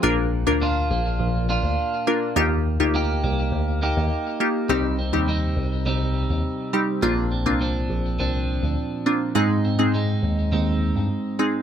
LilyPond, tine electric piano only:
\new Staff \with { instrumentName = "Tine electric piano" } { \clef bass \time 4/4 \key c \minor \tempo 4 = 103 bes,,8. d,8. bes,,8 bes,,8. d,16 r4 | ees,8. d,8. c,8 d,8. ees,16 r4 | c,8. ees,8. c,8 c,8. ees,16 r4 | bes,,8. c,8. bes,,8 c,8. d,16 r4 |
aes,8. aes,8. ees,8 ees,8. g,16 r4 | }